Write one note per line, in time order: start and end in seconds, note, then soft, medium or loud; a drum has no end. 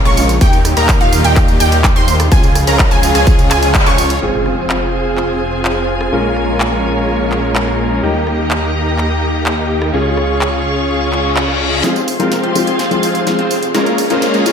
0.00 0.39 C#3 medium
0.00 0.39 F3 medium
0.00 0.37 G#3 medium
0.00 0.39 A#3 medium
0.00 0.39 F4 medium
0.05 0.39 A#1 medium
0.05 0.22 G#3 loud
0.05 0.22 A#3 medium
0.05 0.22 C#4 medium
0.05 0.22 F4 medium
0.05 0.22 C#5 loud
0.05 0.22 C#6 loud
0.05 cross-stick medium
0.05 closed hi-hat soft
0.17 open hi-hat medium
0.17 tambourine medium
0.29 closed hi-hat medium
0.29 tambourine soft
0.41 0.74 D#2 loud
0.41 2.30 A#2 medium
0.41 2.30 D#3 medium
0.41 2.30 G3 medium
0.41 0.58 A#3 loud
0.41 2.30 D#4 medium
0.41 0.58 D#4 medium
0.41 2.30 G4 loud
0.41 0.58 G4 loud
0.41 0.58 G5 loud
0.41 kick loud
0.41 closed hi-hat medium
0.41 tambourine soft
0.53 closed hi-hat soft
0.53 tambourine soft
0.65 cross-stick medium
0.65 open hi-hat loud
0.65 tambourine medium
0.77 0.98 D#2 loud
0.77 0.98 A#3 medium
0.77 0.98 D#4 medium
0.77 0.98 A#4 medium
0.77 0.98 A#5 medium
0.77 closed hi-hat medium
0.77 tambourine soft
0.89 kick loud
0.89 clap loud
0.89 closed hi-hat medium
0.89 tambourine medium
1.01 1.22 D#2 loud
1.01 1.21 A#3 medium
1.01 1.21 D#4 medium
1.01 1.21 F4 loud
1.01 1.21 F5 loud
1.01 closed hi-hat soft
1.13 open hi-hat medium
1.13 tambourine medium
1.24 1.58 D#2 medium
1.24 1.57 A#3 medium
1.24 1.57 D#4 medium
1.24 1.57 G4 medium
1.24 1.57 G5 medium
1.24 closed hi-hat medium
1.24 tambourine soft
1.36 kick loud
1.36 clap medium
1.36 closed hi-hat medium
1.36 tambourine soft
1.48 closed hi-hat soft
1.48 tambourine soft
1.60 1.94 D#2 loud
1.60 1.77 A#3 medium
1.60 1.77 D#4 medium
1.60 1.77 G4 medium
1.60 1.77 G5 medium
1.60 open hi-hat loud
1.60 tambourine medium
1.72 closed hi-hat medium
1.72 tambourine soft
1.84 kick loud
1.84 clap loud
1.84 closed hi-hat medium
1.84 tambourine soft
1.96 2.29 D#2 loud
1.96 2.13 A#3 medium
1.96 2.13 D#4 medium
1.96 2.13 C5 loud
1.96 2.13 C6 loud
1.96 closed hi-hat soft
2.08 open hi-hat medium
2.08 tambourine medium
2.20 cross-stick medium
2.20 closed hi-hat medium
2.20 tambourine soft
2.32 2.65 C#2 loud
2.32 4.20 C#3 medium
2.32 4.20 F3 medium
2.32 4.20 G#3 medium
2.32 2.48 C#4 loud
2.32 2.48 F4 medium
2.32 4.20 F4 medium
2.32 4.20 G#4 loud
2.32 2.48 G#4 loud
2.32 2.48 G#5 loud
2.32 kick loud
2.32 closed hi-hat medium
2.32 tambourine soft
2.44 closed hi-hat soft
2.44 tambourine soft
2.55 cross-stick medium
2.55 open hi-hat loud
2.55 tambourine medium
2.67 2.89 C#2 loud
2.67 2.88 C#4 medium
2.67 2.88 F4 medium
2.67 2.88 A#4 medium
2.67 2.88 A#5 medium
2.67 closed hi-hat medium
2.67 tambourine soft
2.79 kick loud
2.79 clap loud
2.79 closed hi-hat medium
2.79 tambourine soft
2.91 3.13 C#2 loud
2.91 3.11 C#4 medium
2.91 3.11 F4 medium
2.91 3.11 G#4 loud
2.91 3.11 G#5 medium
2.91 closed hi-hat soft
2.91 tambourine soft
3.03 open hi-hat loud
3.03 tambourine medium
3.15 3.48 C#2 loud
3.15 3.48 C#4 medium
3.15 3.48 F4 medium
3.15 3.48 G#4 medium
3.15 3.48 G#5 medium
3.15 closed hi-hat medium
3.15 tambourine soft
3.27 kick loud
3.27 closed hi-hat medium
3.27 tambourine soft
3.39 closed hi-hat soft
3.39 tambourine soft
3.51 3.84 C#2 loud
3.51 3.67 C#4 loud
3.51 3.67 F4 medium
3.51 3.67 G#4 loud
3.51 3.67 G#5 loud
3.51 clap medium
3.51 open hi-hat loud
3.51 tambourine medium
3.63 closed hi-hat medium
3.63 tambourine soft
3.74 kick loud
3.74 clap loud
3.74 closed hi-hat medium
3.74 tambourine soft
3.86 4.20 C#2 loud
3.86 4.19 C#4 loud
3.86 4.19 F4 medium
3.86 4.19 C#5 loud
3.86 4.19 C#6 loud
3.86 cross-stick medium
3.86 closed hi-hat soft
3.86 tambourine soft
3.98 open hi-hat medium
3.98 tambourine medium
4.10 closed hi-hat medium
4.10 tambourine soft
4.21 6.10 F1 medium
4.21 6.09 G#3 medium
4.21 6.10 C4 medium
4.21 7.99 F4 medium
4.21 6.10 F4 medium
4.21 6.11 G#4 medium
4.21 6.10 G#4 medium
4.21 6.11 C5 medium
4.21 7.99 G#5 medium
4.21 impact medium
4.46 cross-stick medium
4.70 clap loud
5.17 clap medium
5.65 clap loud
6.01 cross-stick medium
6.11 8.01 A#1 medium
6.11 8.00 G#3 medium
6.11 8.00 A#3 medium
6.11 8.00 C#4 medium
6.11 8.00 F4 medium
6.11 8.01 G#4 medium
6.11 8.00 A#4 medium
6.11 9.90 A#4 medium
6.11 8.01 C#5 medium
6.36 cross-stick medium
6.60 clap loud
7.32 clap medium
7.55 clap loud
7.67 cross-stick medium
8.02 9.91 D#2 medium
8.02 9.90 G3 medium
8.02 9.90 A#3 medium
8.02 9.91 A#3 medium
8.02 9.91 D#4 medium
8.02 9.91 G4 medium
8.02 9.92 G4 medium
8.02 9.91 G4 medium
8.02 9.92 D#5 medium
8.02 9.92 A#5 medium
8.27 cross-stick medium
8.51 clap loud
8.98 clap medium
9.46 clap loud
9.82 cross-stick medium
9.92 11.82 C#2 medium
9.92 11.81 G#3 medium
9.92 11.81 C#4 medium
9.92 11.81 F4 medium
9.92 11.82 G#4 medium
9.92 11.81 G#4 medium
9.92 11.82 G#4 medium
9.92 11.82 C#5 medium
9.92 11.82 F5 medium
9.92 11.82 C#6 medium
10.17 cross-stick medium
10.41 clap loud
10.89 reverse cymbal medium
11.13 clap medium
11.36 clap loud
11.48 cross-stick medium
11.83 12.17 F1 loud
11.83 11.93 F3 medium
11.83 11.93 G#3 medium
11.83 12.01 C4 medium
11.83 11.94 C4 medium
11.83 12.01 F4 medium
11.83 11.94 F4 medium
11.83 14.52 G#4 medium
11.83 12.01 G#4 loud
11.83 13.73 C5 medium
11.83 13.73 F5 medium
11.83 13.73 C6 medium
11.83 snare soft
11.83 closed hi-hat soft
11.83 tambourine soft
11.83 riser medium
11.96 closed hi-hat soft
11.96 tambourine soft
12.08 open hi-hat medium
12.08 tambourine medium
12.19 12.41 F1 medium
12.19 12.52 F3 medium
12.19 12.52 G#3 medium
12.19 12.41 C4 medium
12.19 12.53 C4 medium
12.19 12.41 F4 medium
12.19 12.53 F4 loud
12.19 12.41 A#4 medium
12.19 closed hi-hat medium
12.19 tambourine soft
12.32 snare soft
12.32 closed hi-hat medium
12.32 tambourine soft
12.44 12.65 F1 medium
12.44 12.64 C4 medium
12.44 12.64 F4 medium
12.44 12.64 G4 medium
12.44 closed hi-hat soft
12.55 12.65 F3 medium
12.55 12.65 G#3 medium
12.55 12.65 C4 medium
12.55 12.65 F4 loud
12.55 open hi-hat medium
12.55 tambourine medium
12.67 13.01 F1 medium
12.67 13.00 C4 medium
12.67 13.00 F4 medium
12.67 13.00 G#4 medium
12.67 closed hi-hat medium
12.67 tambourine soft
12.79 snare soft
12.79 closed hi-hat medium
12.79 tambourine soft
12.91 13.24 F3 medium
12.91 13.24 G#3 medium
12.91 13.24 C4 medium
12.91 13.24 F4 medium
12.91 closed hi-hat soft
12.91 tambourine soft
13.03 13.36 F1 medium
13.03 13.20 C4 medium
13.03 13.20 F4 medium
13.03 13.20 G#4 medium
13.03 open hi-hat loud
13.03 tambourine medium
13.15 closed hi-hat medium
13.15 tambourine soft
13.26 13.36 F3 medium
13.26 13.36 G#3 medium
13.26 13.36 C4 medium
13.26 13.37 F4 medium
13.26 snare medium
13.26 closed hi-hat medium
13.26 tambourine soft
13.39 13.72 F1 medium
13.39 13.56 C4 medium
13.39 13.56 F4 medium
13.39 13.56 C5 loud
13.39 closed hi-hat soft
13.51 open hi-hat medium
13.51 tambourine medium
13.63 closed hi-hat medium
13.63 tambourine soft
13.74 14.08 A#1 loud
13.74 13.84 G#3 medium
13.74 13.91 G#3 medium
13.74 13.84 A#3 medium
13.74 13.91 A#3 medium
13.74 13.91 C#4 medium
13.74 13.84 C#4 medium
13.74 13.91 F4 medium
13.74 13.84 F4 loud
13.74 13.91 A#4 loud
13.74 14.52 C#5 medium
13.74 14.52 F5 medium
13.74 14.52 A#5 medium
13.74 snare medium
13.74 closed hi-hat soft
13.74 tambourine soft
13.86 closed hi-hat soft
13.86 tambourine soft
13.98 open hi-hat loud
13.98 tambourine medium
14.10 14.32 A#1 medium
14.10 14.43 G#3 medium
14.10 14.31 G#3 medium
14.10 14.43 A#3 medium
14.10 14.31 A#3 medium
14.10 14.31 C#4 medium
14.10 14.43 C#4 medium
14.10 14.31 F4 medium
14.10 14.43 F4 loud
14.10 14.31 C5 medium
14.10 closed hi-hat soft
14.10 tambourine soft
14.22 snare medium
14.22 closed hi-hat medium
14.22 tambourine soft
14.34 14.52 A#1 loud
14.34 14.52 G#3 medium
14.34 14.52 A#3 medium
14.34 14.52 C#4 medium
14.34 14.52 F4 medium
14.34 14.52 G#4 medium
14.34 closed hi-hat soft
14.34 tambourine soft
14.45 14.52 G#3 medium
14.45 14.52 A#3 medium
14.45 14.52 C#4 medium
14.45 14.52 F4 loud
14.45 open hi-hat medium
14.45 tambourine medium